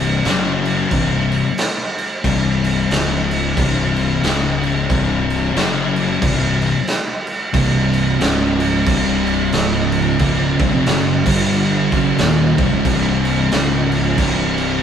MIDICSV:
0, 0, Header, 1, 4, 480
1, 0, Start_track
1, 0, Tempo, 663717
1, 1621, Time_signature, 4, 2, 24, 8
1, 10723, End_track
2, 0, Start_track
2, 0, Title_t, "Distorted electric guitar"
2, 0, Program_c, 0, 30
2, 0, Note_on_c, 0, 36, 94
2, 0, Note_on_c, 0, 43, 104
2, 0, Note_on_c, 0, 48, 121
2, 186, Note_off_c, 0, 36, 0
2, 186, Note_on_c, 0, 42, 85
2, 188, Note_off_c, 0, 43, 0
2, 188, Note_on_c, 0, 49, 102
2, 190, Note_off_c, 0, 48, 0
2, 190, Note_on_c, 0, 54, 113
2, 658, Note_off_c, 0, 42, 0
2, 659, Note_off_c, 0, 49, 0
2, 660, Note_off_c, 0, 54, 0
2, 664, Note_on_c, 0, 36, 87
2, 669, Note_on_c, 0, 43, 99
2, 670, Note_on_c, 0, 48, 117
2, 1040, Note_off_c, 0, 36, 0
2, 1043, Note_off_c, 0, 43, 0
2, 1044, Note_off_c, 0, 48, 0
2, 1623, Note_on_c, 0, 36, 104
2, 1626, Note_on_c, 0, 43, 123
2, 1627, Note_on_c, 0, 48, 110
2, 2108, Note_off_c, 0, 36, 0
2, 2108, Note_on_c, 0, 37, 93
2, 2109, Note_off_c, 0, 43, 0
2, 2109, Note_on_c, 0, 44, 103
2, 2114, Note_off_c, 0, 48, 0
2, 2114, Note_on_c, 0, 49, 122
2, 2579, Note_off_c, 0, 37, 0
2, 2579, Note_off_c, 0, 44, 0
2, 2582, Note_off_c, 0, 49, 0
2, 2586, Note_on_c, 0, 36, 100
2, 2590, Note_on_c, 0, 43, 96
2, 2595, Note_on_c, 0, 48, 96
2, 3068, Note_off_c, 0, 36, 0
2, 3068, Note_on_c, 0, 37, 93
2, 3072, Note_off_c, 0, 43, 0
2, 3072, Note_on_c, 0, 44, 91
2, 3073, Note_off_c, 0, 48, 0
2, 3073, Note_on_c, 0, 49, 98
2, 3538, Note_off_c, 0, 37, 0
2, 3541, Note_off_c, 0, 44, 0
2, 3541, Note_off_c, 0, 49, 0
2, 3541, Note_on_c, 0, 36, 100
2, 3545, Note_on_c, 0, 48, 110
2, 3546, Note_on_c, 0, 43, 100
2, 4015, Note_off_c, 0, 36, 0
2, 4015, Note_on_c, 0, 42, 100
2, 4016, Note_off_c, 0, 43, 0
2, 4016, Note_on_c, 0, 49, 113
2, 4024, Note_off_c, 0, 48, 0
2, 4024, Note_on_c, 0, 54, 126
2, 4488, Note_off_c, 0, 42, 0
2, 4491, Note_on_c, 0, 36, 106
2, 4492, Note_off_c, 0, 49, 0
2, 4492, Note_off_c, 0, 54, 0
2, 4495, Note_on_c, 0, 43, 86
2, 4495, Note_on_c, 0, 48, 105
2, 4874, Note_off_c, 0, 36, 0
2, 4876, Note_off_c, 0, 43, 0
2, 4876, Note_off_c, 0, 48, 0
2, 5447, Note_on_c, 0, 36, 84
2, 5450, Note_on_c, 0, 43, 106
2, 5452, Note_on_c, 0, 48, 115
2, 5926, Note_off_c, 0, 36, 0
2, 5929, Note_off_c, 0, 43, 0
2, 5929, Note_on_c, 0, 37, 93
2, 5931, Note_off_c, 0, 48, 0
2, 5931, Note_on_c, 0, 44, 89
2, 5936, Note_on_c, 0, 49, 108
2, 6410, Note_off_c, 0, 37, 0
2, 6411, Note_off_c, 0, 44, 0
2, 6413, Note_off_c, 0, 49, 0
2, 6414, Note_on_c, 0, 36, 87
2, 6418, Note_on_c, 0, 43, 107
2, 6418, Note_on_c, 0, 48, 101
2, 6892, Note_off_c, 0, 36, 0
2, 6894, Note_off_c, 0, 43, 0
2, 6894, Note_off_c, 0, 48, 0
2, 6895, Note_on_c, 0, 37, 104
2, 6897, Note_on_c, 0, 44, 101
2, 6901, Note_on_c, 0, 49, 111
2, 7369, Note_off_c, 0, 37, 0
2, 7371, Note_off_c, 0, 44, 0
2, 7375, Note_off_c, 0, 49, 0
2, 7378, Note_on_c, 0, 37, 93
2, 7380, Note_on_c, 0, 44, 108
2, 7383, Note_on_c, 0, 49, 116
2, 7658, Note_off_c, 0, 37, 0
2, 7659, Note_off_c, 0, 44, 0
2, 7661, Note_off_c, 0, 49, 0
2, 7668, Note_on_c, 0, 36, 91
2, 7675, Note_on_c, 0, 43, 97
2, 7759, Note_off_c, 0, 36, 0
2, 7762, Note_off_c, 0, 43, 0
2, 7769, Note_on_c, 0, 41, 96
2, 7770, Note_on_c, 0, 48, 100
2, 7858, Note_off_c, 0, 41, 0
2, 7858, Note_off_c, 0, 48, 0
2, 7867, Note_on_c, 0, 42, 104
2, 7870, Note_on_c, 0, 49, 110
2, 7878, Note_on_c, 0, 54, 105
2, 8142, Note_off_c, 0, 42, 0
2, 8144, Note_off_c, 0, 49, 0
2, 8148, Note_off_c, 0, 54, 0
2, 8155, Note_on_c, 0, 43, 100
2, 8155, Note_on_c, 0, 50, 90
2, 8159, Note_on_c, 0, 55, 114
2, 8623, Note_off_c, 0, 43, 0
2, 8623, Note_off_c, 0, 50, 0
2, 8625, Note_off_c, 0, 55, 0
2, 8630, Note_on_c, 0, 42, 109
2, 8633, Note_on_c, 0, 49, 98
2, 8635, Note_on_c, 0, 54, 99
2, 8814, Note_off_c, 0, 42, 0
2, 8817, Note_off_c, 0, 49, 0
2, 8817, Note_on_c, 0, 39, 104
2, 8818, Note_off_c, 0, 54, 0
2, 8820, Note_on_c, 0, 46, 106
2, 8826, Note_on_c, 0, 51, 116
2, 9097, Note_off_c, 0, 39, 0
2, 9099, Note_off_c, 0, 46, 0
2, 9102, Note_off_c, 0, 51, 0
2, 9106, Note_on_c, 0, 36, 96
2, 9109, Note_on_c, 0, 43, 110
2, 9194, Note_off_c, 0, 36, 0
2, 9197, Note_off_c, 0, 43, 0
2, 9197, Note_on_c, 0, 37, 101
2, 9199, Note_on_c, 0, 44, 105
2, 9291, Note_off_c, 0, 37, 0
2, 9293, Note_off_c, 0, 44, 0
2, 9295, Note_on_c, 0, 36, 95
2, 9299, Note_on_c, 0, 43, 107
2, 9302, Note_on_c, 0, 48, 106
2, 9772, Note_off_c, 0, 36, 0
2, 9774, Note_off_c, 0, 43, 0
2, 9775, Note_on_c, 0, 37, 102
2, 9776, Note_off_c, 0, 48, 0
2, 9782, Note_on_c, 0, 44, 120
2, 9782, Note_on_c, 0, 49, 109
2, 10251, Note_off_c, 0, 37, 0
2, 10253, Note_on_c, 0, 36, 97
2, 10256, Note_off_c, 0, 44, 0
2, 10256, Note_off_c, 0, 49, 0
2, 10259, Note_on_c, 0, 43, 94
2, 10262, Note_on_c, 0, 48, 100
2, 10723, Note_off_c, 0, 36, 0
2, 10723, Note_off_c, 0, 43, 0
2, 10723, Note_off_c, 0, 48, 0
2, 10723, End_track
3, 0, Start_track
3, 0, Title_t, "Fingered electric bass"
3, 0, Program_c, 1, 33
3, 0, Note_on_c, 1, 24, 106
3, 153, Note_off_c, 1, 24, 0
3, 183, Note_on_c, 1, 30, 99
3, 633, Note_off_c, 1, 30, 0
3, 656, Note_on_c, 1, 24, 106
3, 1015, Note_off_c, 1, 24, 0
3, 1623, Note_on_c, 1, 24, 98
3, 2073, Note_off_c, 1, 24, 0
3, 2097, Note_on_c, 1, 25, 104
3, 2551, Note_off_c, 1, 25, 0
3, 2585, Note_on_c, 1, 24, 103
3, 3034, Note_off_c, 1, 24, 0
3, 3064, Note_on_c, 1, 25, 115
3, 3514, Note_off_c, 1, 25, 0
3, 3545, Note_on_c, 1, 24, 102
3, 3995, Note_off_c, 1, 24, 0
3, 4020, Note_on_c, 1, 30, 104
3, 4472, Note_off_c, 1, 30, 0
3, 4496, Note_on_c, 1, 24, 104
3, 4855, Note_off_c, 1, 24, 0
3, 5455, Note_on_c, 1, 24, 102
3, 5909, Note_off_c, 1, 24, 0
3, 5936, Note_on_c, 1, 25, 104
3, 6390, Note_off_c, 1, 25, 0
3, 6414, Note_on_c, 1, 24, 104
3, 6869, Note_off_c, 1, 24, 0
3, 6901, Note_on_c, 1, 25, 112
3, 7352, Note_off_c, 1, 25, 0
3, 7377, Note_on_c, 1, 25, 113
3, 7646, Note_off_c, 1, 25, 0
3, 7665, Note_on_c, 1, 24, 100
3, 7756, Note_off_c, 1, 24, 0
3, 7764, Note_on_c, 1, 29, 93
3, 7854, Note_off_c, 1, 29, 0
3, 7861, Note_on_c, 1, 30, 106
3, 8128, Note_off_c, 1, 30, 0
3, 8139, Note_on_c, 1, 31, 110
3, 8595, Note_off_c, 1, 31, 0
3, 8626, Note_on_c, 1, 30, 91
3, 8806, Note_off_c, 1, 30, 0
3, 8822, Note_on_c, 1, 27, 108
3, 9088, Note_off_c, 1, 27, 0
3, 9101, Note_on_c, 1, 24, 89
3, 9190, Note_off_c, 1, 24, 0
3, 9194, Note_on_c, 1, 25, 94
3, 9289, Note_off_c, 1, 25, 0
3, 9299, Note_on_c, 1, 24, 104
3, 9751, Note_off_c, 1, 24, 0
3, 9783, Note_on_c, 1, 25, 106
3, 10233, Note_off_c, 1, 25, 0
3, 10257, Note_on_c, 1, 24, 116
3, 10711, Note_off_c, 1, 24, 0
3, 10723, End_track
4, 0, Start_track
4, 0, Title_t, "Drums"
4, 182, Note_on_c, 9, 49, 83
4, 188, Note_on_c, 9, 38, 111
4, 254, Note_off_c, 9, 49, 0
4, 260, Note_off_c, 9, 38, 0
4, 473, Note_on_c, 9, 49, 73
4, 545, Note_off_c, 9, 49, 0
4, 660, Note_on_c, 9, 36, 113
4, 660, Note_on_c, 9, 49, 91
4, 732, Note_off_c, 9, 36, 0
4, 732, Note_off_c, 9, 49, 0
4, 953, Note_on_c, 9, 49, 67
4, 1025, Note_off_c, 9, 49, 0
4, 1141, Note_on_c, 9, 49, 100
4, 1147, Note_on_c, 9, 38, 121
4, 1213, Note_off_c, 9, 49, 0
4, 1220, Note_off_c, 9, 38, 0
4, 1435, Note_on_c, 9, 49, 72
4, 1508, Note_off_c, 9, 49, 0
4, 1622, Note_on_c, 9, 36, 103
4, 1624, Note_on_c, 9, 49, 92
4, 1694, Note_off_c, 9, 36, 0
4, 1696, Note_off_c, 9, 49, 0
4, 1911, Note_on_c, 9, 49, 81
4, 1983, Note_off_c, 9, 49, 0
4, 2105, Note_on_c, 9, 49, 94
4, 2111, Note_on_c, 9, 38, 118
4, 2177, Note_off_c, 9, 49, 0
4, 2184, Note_off_c, 9, 38, 0
4, 2394, Note_on_c, 9, 49, 77
4, 2466, Note_off_c, 9, 49, 0
4, 2582, Note_on_c, 9, 36, 108
4, 2586, Note_on_c, 9, 49, 96
4, 2655, Note_off_c, 9, 36, 0
4, 2658, Note_off_c, 9, 49, 0
4, 2867, Note_on_c, 9, 49, 68
4, 2940, Note_off_c, 9, 49, 0
4, 3063, Note_on_c, 9, 49, 83
4, 3070, Note_on_c, 9, 38, 112
4, 3136, Note_off_c, 9, 49, 0
4, 3142, Note_off_c, 9, 38, 0
4, 3351, Note_on_c, 9, 49, 67
4, 3423, Note_off_c, 9, 49, 0
4, 3543, Note_on_c, 9, 36, 109
4, 3549, Note_on_c, 9, 49, 76
4, 3615, Note_off_c, 9, 36, 0
4, 3622, Note_off_c, 9, 49, 0
4, 3834, Note_on_c, 9, 49, 66
4, 3906, Note_off_c, 9, 49, 0
4, 4025, Note_on_c, 9, 49, 90
4, 4031, Note_on_c, 9, 38, 113
4, 4097, Note_off_c, 9, 49, 0
4, 4104, Note_off_c, 9, 38, 0
4, 4311, Note_on_c, 9, 49, 71
4, 4383, Note_off_c, 9, 49, 0
4, 4498, Note_on_c, 9, 36, 117
4, 4500, Note_on_c, 9, 49, 98
4, 4571, Note_off_c, 9, 36, 0
4, 4572, Note_off_c, 9, 49, 0
4, 4784, Note_on_c, 9, 49, 68
4, 4857, Note_off_c, 9, 49, 0
4, 4972, Note_on_c, 9, 49, 85
4, 4978, Note_on_c, 9, 38, 115
4, 5044, Note_off_c, 9, 49, 0
4, 5050, Note_off_c, 9, 38, 0
4, 5257, Note_on_c, 9, 49, 67
4, 5329, Note_off_c, 9, 49, 0
4, 5450, Note_on_c, 9, 49, 97
4, 5452, Note_on_c, 9, 36, 105
4, 5522, Note_off_c, 9, 49, 0
4, 5525, Note_off_c, 9, 36, 0
4, 5738, Note_on_c, 9, 49, 76
4, 5810, Note_off_c, 9, 49, 0
4, 5935, Note_on_c, 9, 49, 95
4, 5942, Note_on_c, 9, 38, 127
4, 6007, Note_off_c, 9, 49, 0
4, 6014, Note_off_c, 9, 38, 0
4, 6219, Note_on_c, 9, 49, 75
4, 6291, Note_off_c, 9, 49, 0
4, 6409, Note_on_c, 9, 49, 99
4, 6412, Note_on_c, 9, 36, 114
4, 6481, Note_off_c, 9, 49, 0
4, 6485, Note_off_c, 9, 36, 0
4, 6702, Note_on_c, 9, 49, 65
4, 6774, Note_off_c, 9, 49, 0
4, 6889, Note_on_c, 9, 49, 93
4, 6895, Note_on_c, 9, 38, 112
4, 6961, Note_off_c, 9, 49, 0
4, 6968, Note_off_c, 9, 38, 0
4, 7174, Note_on_c, 9, 49, 68
4, 7247, Note_off_c, 9, 49, 0
4, 7371, Note_on_c, 9, 49, 88
4, 7375, Note_on_c, 9, 36, 101
4, 7443, Note_off_c, 9, 49, 0
4, 7447, Note_off_c, 9, 36, 0
4, 7661, Note_on_c, 9, 49, 75
4, 7663, Note_on_c, 9, 36, 120
4, 7734, Note_off_c, 9, 49, 0
4, 7735, Note_off_c, 9, 36, 0
4, 7856, Note_on_c, 9, 49, 86
4, 7862, Note_on_c, 9, 38, 123
4, 7928, Note_off_c, 9, 49, 0
4, 7935, Note_off_c, 9, 38, 0
4, 8142, Note_on_c, 9, 36, 116
4, 8145, Note_on_c, 9, 49, 121
4, 8215, Note_off_c, 9, 36, 0
4, 8217, Note_off_c, 9, 49, 0
4, 8336, Note_on_c, 9, 49, 82
4, 8409, Note_off_c, 9, 49, 0
4, 8620, Note_on_c, 9, 49, 63
4, 8623, Note_on_c, 9, 36, 107
4, 8692, Note_off_c, 9, 49, 0
4, 8695, Note_off_c, 9, 36, 0
4, 8811, Note_on_c, 9, 49, 85
4, 8818, Note_on_c, 9, 38, 125
4, 8883, Note_off_c, 9, 49, 0
4, 8890, Note_off_c, 9, 38, 0
4, 9097, Note_on_c, 9, 49, 73
4, 9101, Note_on_c, 9, 36, 112
4, 9170, Note_off_c, 9, 49, 0
4, 9173, Note_off_c, 9, 36, 0
4, 9292, Note_on_c, 9, 49, 95
4, 9294, Note_on_c, 9, 36, 105
4, 9364, Note_off_c, 9, 49, 0
4, 9366, Note_off_c, 9, 36, 0
4, 9581, Note_on_c, 9, 49, 76
4, 9653, Note_off_c, 9, 49, 0
4, 9775, Note_on_c, 9, 49, 97
4, 9781, Note_on_c, 9, 38, 122
4, 9847, Note_off_c, 9, 49, 0
4, 9853, Note_off_c, 9, 38, 0
4, 10065, Note_on_c, 9, 49, 80
4, 10137, Note_off_c, 9, 49, 0
4, 10253, Note_on_c, 9, 49, 96
4, 10254, Note_on_c, 9, 36, 110
4, 10326, Note_off_c, 9, 36, 0
4, 10326, Note_off_c, 9, 49, 0
4, 10543, Note_on_c, 9, 49, 67
4, 10615, Note_off_c, 9, 49, 0
4, 10723, End_track
0, 0, End_of_file